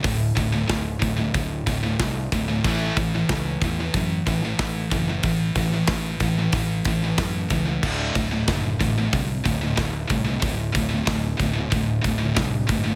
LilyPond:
<<
  \new Staff \with { instrumentName = "Distorted electric guitar" } { \clef bass \time 4/4 \tempo 4 = 92 <d, a,>8 <d, a,>16 <d, a,>16 <d, a,>8 <d, a,>16 <d, a,>16 <d, a,>8 <d, a,>16 <d, a,>16 <d, a,>8 <d, a,>16 <d, a,>16 | <a, e a>8 <a, e>16 <a, e>16 <a, e>8 <a, e>16 <a, e>16 <a, e>8 <a, e>16 <a, e>16 <a, e>8 <a, e>16 <a, e>16 | <a, e>8 <a, e>16 <a, e>16 <a, e>8 <a, e>16 <a, e>16 <a, e>8 <a, e>16 <a, e>16 <a, e>8 <a, e>16 <a, e>16 | <d, a, d>8 <d, a,>16 <d, a,>16 <d, a,>8 <d, a,>16 <d, a,>16 <d, a,>8 <d, a,>16 <d, a,>16 <d, a,>8 <d, a,>16 <d, a,>16 |
<d, a,>8 <d, a,>16 <d, a,>16 <d, a,>8 <d, a,>16 <d, a,>16 <d, a,>8 <d, a,>16 <d, a,>16 <d, a,>8 <d, a,>16 <d, a,>16 | }
  \new Staff \with { instrumentName = "Distorted electric guitar" } { \clef bass \time 4/4 <d, a,>8 <d, a,>16 <d, a,>16 <d, a,>8 <d, a,>16 <d, a,>16 <d, a,>8 <d, a,>16 <d, a,>16 <d, a,>8 <d, a,>16 <d, a,>16 | <a, e a>8 <a, e>16 <a, e>16 <a, e>8 <a, e>16 <a, e>16 <a, e>8 <a, e>16 <a, e>16 <a, e>8 <a, e>16 <a, e>16 | <a, e>8 <a, e>16 <a, e>16 <a, e>8 <a, e>16 <a, e>16 <a, e>8 <a, e>16 <a, e>16 <a, e>8 <a, e>16 <a, e>16 | <d, a, d>8 <d, a,>16 <d, a,>16 <d, a,>8 <d, a,>16 <d, a,>16 <d, a,>8 <d, a,>16 <d, a,>16 <d, a,>8 <d, a,>16 <d, a,>16 |
<d, a,>8 <d, a,>16 <d, a,>16 <d, a,>8 <d, a,>16 <d, a,>16 <d, a,>8 <d, a,>16 <d, a,>16 <d, a,>8 <d, a,>16 <d, a,>16 | }
  \new Staff \with { instrumentName = "Fingered electric bass" } { \clef bass \time 4/4 d,,8 d,,8 d,,8 d,,8 d,,8 d,,8 c,8 d,,8 | a,,8 a,,8 cis,8 e,8 fis,8 a,,8 a,,8 fis,,8 | a,,8 a,,8 a,,8 a,,8 a,,8 a,,8 fis,8 cis,8 | d,,8 d,,8 fis,,8 a,,8 c,8 d,,8 d,,8 c,8 |
d,,8 d,,8 d,,8 d,,8 d,,8 d,,8 c,8 g,,8 | }
  \new DrumStaff \with { instrumentName = "Drums" } \drummode { \time 4/4 <hho bd>8 <hho bd>8 <hho bd sn>8 <hho bd>8 <hho bd>8 <hho bd>8 <hho bd sn>8 <hho bd>8 | <hho bd>8 <hho bd>8 <hho bd sn>8 <hho bd>8 <hho bd>8 <hho bd>8 <hho bd sn>8 <hho bd>8 | <hho bd>8 <hho bd>8 <hho bd sn>8 <hho bd>8 <hho bd>8 <hho bd>8 <hho bd sn>8 <hho bd>8 | <cymc bd>8 <hho bd>8 <hho bd sn>8 <hho bd>8 <hho bd>8 <hho bd>8 <hho bd sn>8 <hho bd>8 |
<hho bd>8 <hho bd>8 <hho bd sn>8 <hho bd>8 <hho bd>8 <hho bd>8 <hho bd sn>8 <hho bd>8 | }
>>